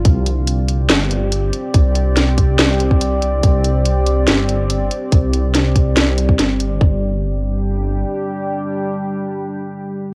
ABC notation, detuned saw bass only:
X:1
M:4/4
L:1/8
Q:1/4=142
K:Cm
V:1 name="Detuned saw bass" clef=bass
C,,4 G,,,3 z | C,,4 C,,3 C,, | C,,4 G,,,3 z | C,,4 C,,2 G,,,2 |
G,,,6 z2 | z8 |]